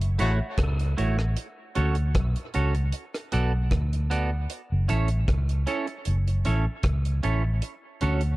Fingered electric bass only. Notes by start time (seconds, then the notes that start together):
Already playing: F#1
0.21 A1
0.59 C#2
0.99 A1
1.77 D2
2.16 B1
2.56 C#2
3.34 B1
3.72 D2
4.72 F#1
4.90 A1
5.29 C#2
6.07 F#1
6.47 A1
6.84 C#2
7.25 A1
8.03 D2